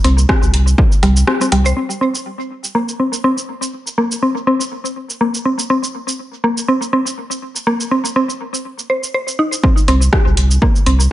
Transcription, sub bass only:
0.04 0.25 C2 loud
0.43 0.52 C2 medium
0.54 0.74 C2 medium
1.03 1.24 C2 medium
1.52 1.73 C2 loud
9.88 10.09 C2 medium
10.27 10.35 C2 medium
10.37 10.58 C2 medium
10.87 11.07 C2 loud

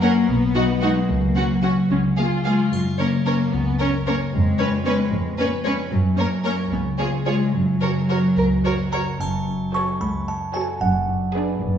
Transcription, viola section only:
0.02 0.10 C#4 soft
0.55 0.63 D#4 soft
0.82 0.90 D#4 soft
1.35 1.43 C#4 soft
1.63 1.71 C#4 soft
1.91 1.99 C#4 soft
2.17 2.44 F4 soft
2.45 2.72 F4 soft
2.99 3.07 C#4 soft
3.27 3.35 C#4 soft
3.81 3.89 C#4 soft
4.07 4.15 C#4 soft
4.59 4.67 C#4 soft
4.85 4.93 C#4 soft
5.39 5.47 C#4 soft
5.65 5.73 C#4 soft
6.18 6.26 C#4 soft
6.45 6.53 C#4 soft
6.99 7.07 F4 soft
7.25 7.33 F4 soft
7.82 7.90 F#4 soft
8.09 8.17 F#4 soft
8.65 8.73 F#4 soft
8.93 9.01 F#4 soft
9.74 9.94 F#4 soft
10.55 10.74 F#4 soft
11.34 11.54 D4 soft

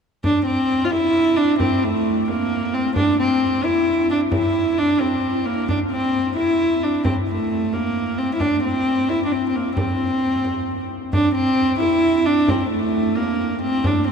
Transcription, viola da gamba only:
0.24 0.45 D4 medium
0.46 0.86 C4 medium
0.84 0.93 F4 medium
0.91 1.38 E4 medium
1.36 1.59 D4 medium
1.60 1.85 C4 medium
1.83 2.28 A3 medium
2.30 2.76 A#3 medium
2.74 2.96 C4 medium
2.97 3.17 D4 medium
3.19 3.66 C4 medium
3.64 4.09 E4 medium
4.10 4.20 D4 medium
4.32 4.79 E4 medium
4.78 5.02 D4 medium
5.01 5.47 C4 medium
5.46 5.68 A#3 medium
5.69 5.79 D4 medium
5.91 6.33 C4 medium
6.37 6.84 E4 medium
6.83 7.04 D4 medium
7.04 7.15 C4 medium
7.28 7.75 A3 medium
7.73 8.19 A#3 medium
8.18 8.33 C4 medium
8.34 8.41 E4 medium
8.40 8.63 D4 medium
8.64 9.11 C4 medium
9.09 9.24 E4 medium
9.25 9.33 D4 soft
9.32 9.48 C4 medium
9.48 9.57 C4 medium
9.56 9.77 A#3 medium
9.78 10.87 C4 medium
11.13 11.34 D4 medium
11.35 11.77 C4 medium
11.80 12.27 E4 medium
12.26 12.51 D4 loud
12.49 12.70 C4 medium
12.71 13.18 A3 medium
13.16 13.61 A#3 medium
13.63 13.88 C4 medium
13.87 14.08 D4 medium
14.09 14.12 C4 medium

